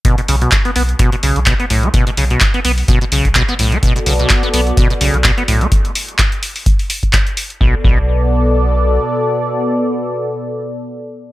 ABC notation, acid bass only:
X:1
M:4/4
L:1/16
Q:"Swing 16ths" 1/4=127
K:Bm
V:1 name="Acid bass" clef=bass
B,, B,, C, B,, z B, B, z B,, B,, C, D, B,, B, A,, B, | B,, B,, C, B,, z B, B, z B,, B,, C, D, B,, B, A,, B, | B,, B,, C, B,, z B, B, z B,, B,, C, D, B,, B, A,, B, | z16 |
B,, z B,, z12 z | z16 |]